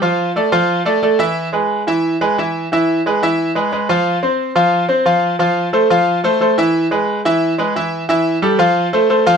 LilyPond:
\new Staff \with { instrumentName = "Grand piano" } { \time 4/4 \key e \phrygian \tempo 4 = 179 <f f' f''>4 <a a' d''>8 <f f' f''>4 <a a' d''>8 <a a' d''>8 <e e' e''>8~ | <e e' e''>8 <gis gis' b'>4 <e e' e''>4 <gis gis' b'>8 <e e' e''>4 | <e e' e''>4 <gis gis' b'>8 <e e' e''>4 <gis gis' b'>8 <gis gis' b'>8 <f f' f''>8~ | <f f' f''>8 <c' c''>4 <f f' f''>4 <c' c''>8 <f f' f''>4 |
<f f' f''>4 <a a' c''>8 <f f' f''>4 <a a' c''>8 <a a' c''>8 <e e' e''>8~ | <e e' e''>8 <gis gis' b'>4 <e e' e''>4 <gis gis' b'>8 <e e' e''>4 | <e e' e''>4 <g g' a'>8 <f f' f''>4 <a a' c''>8 <a a' c''>8 <f f' f''>8 | }